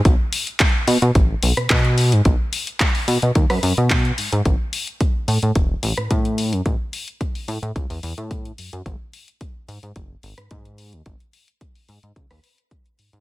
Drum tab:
HH |x-oxx-oxx-oxxxox|x-oxxooxxooxxxox|x-oxx-oxx-oxxxox|x-oxxooxxooxxxox|
CP |----x-------x---|----x-------x---|----------------|----------------|
SD |-----------r----|---------r------|-----------r----|----------------|
BD |o---o---o---o---|o---o---o---o---|o---o---o---o---|o---o---o---o---|

HH |x-oxx-oxx-oxxxox|xxoxxooxxooxxxox|
CP |----------------|----------------|
SD |-----------r----|---------r------|
BD |o---o---o---o---|o---o---o---o---|